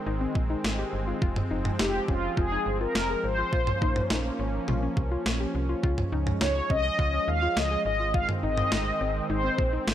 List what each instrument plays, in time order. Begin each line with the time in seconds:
Already playing: analog synth pad D#3 G#3 C4
0.06 fm bass G#1, synth arpeggio sound D#4
0.21 synth arpeggio sound C4
0.35 fm bass A#1, kick
0.50 synth arpeggio sound D#4
0.64 fm bass G#1, snare
0.79 synth arpeggio sound G4
0.93 fm bass G1
1.07 synth arpeggio sound F4
1.22 fm bass F1, analog synth pad F3, synth arpeggio sound F4, kick
1.36 mid tom
1.51 fm bass F1, synth arpeggio sound D#4
1.65 mid tom
1.79 fm bass F1, synth arpeggio sound D#4, analog polysynth G4, snare
2.08 fm bass F1, synth arpeggio sound C#4, analog polysynth F4, kick
2.37 fm bass F1, synth arpeggio sound F4, analog polysynth G#4, kick
2.52 synth arpeggio sound D#4
2.66 fm bass G1
2.81 synth arpeggio sound F4, analog polysynth A#4
2.95 fm bass F1, snare
3.10 synth arpeggio sound G#4
3.24 fm bass G#1, analog polysynth C5
3.38 synth arpeggio sound F4
3.53 fm bass A#1, analog synth pad A#3 C#4, synth arpeggio sound F4, kick
3.67 mid tom
3.82 fm bass A#1, synth arpeggio sound D#4, kick
3.96 mid tom
4.10 fm bass A#1, synth arpeggio sound D#4, snare
4.39 fm bass G#1, synth arpeggio sound C#4
4.68 fm bass A#1, synth arpeggio sound F4, mid tom
4.83 synth arpeggio sound C#4
4.97 fm bass C2, kick
5.11 synth arpeggio sound F4
5.26 fm bass A#1, snare
5.40 synth arpeggio sound G4
5.55 fm bass C2
5.69 synth arpeggio sound F4
5.83 fm bass C#2, analog synth pad G#3, synth arpeggio sound F4, kick
5.98 mid tom
6.12 fm bass C#2, synth arpeggio sound D#4
6.27 mid tom
6.41 fm bass C#2, synth arpeggio sound D#4, analog polysynth C#5, snare
6.70 fm bass C2, synth arpeggio sound C#4, analog polysynth D#5, kick
6.99 fm bass C#2, synth arpeggio sound F4, kick
7.13 synth arpeggio sound C#4
7.28 fm bass D#2, analog polysynth F5
7.42 synth arpeggio sound F4
7.57 fm bass C#2, analog polysynth D#5, snare
7.71 synth arpeggio sound G#4
7.85 fm bass G#1, analog synth pad D#3 C4, analog polysynth D#5
8.00 synth arpeggio sound F4
8.14 synth arpeggio sound F4, analog polysynth F5, kick
8.29 mid tom
8.43 fm bass G#1, synth arpeggio sound D#4, analog polysynth D#5
8.57 mid tom
8.72 fm bass G#1, synth arpeggio sound D#4, snare
9.01 fm bass G#1, synth arpeggio sound C4
9.30 fm bass G#1, synth arpeggio sound D#4, analog polysynth C5
9.44 synth arpeggio sound C4
9.58 fm bass A#1, kick
9.73 synth arpeggio sound D#4
9.87 fm bass G#1, snare